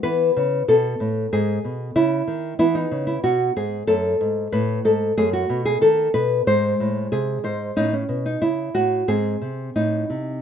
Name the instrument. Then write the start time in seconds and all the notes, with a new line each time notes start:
nylon-string guitar
0.03 E3 B3 B4
0.36 C#3
0.68 B2 A4
1.00 A2
1.33 G#2 G#4
1.64 B2
1.96 C#3 E4
2.27 D#3
2.59 E3 B3 E4
2.75 D#4
2.91 C#3
3.07 E4
3.23 B2 F#4
3.56 G#2 G#4
3.87 F#2 A3 A4
4.21 G#2
4.52 A2 B4
4.85 G#2 A4
5.17 F#2 A3 G#4
5.33 F#4
5.50 B2
5.65 G#4
5.81 D#3 A4
6.14 B2 B4
6.47 G#2 G#3 C5
6.80 A2
7.12 C3 G#4
7.44 G#2 C5
7.76 A2 C#4 D#4
7.93 C#4
8.09 B2
8.26 D#4
8.42 C#3 E4
8.75 A2 F#4
9.08 G#2 C4 G#4
9.42 C3
9.76 A2 D#4
10.10 C3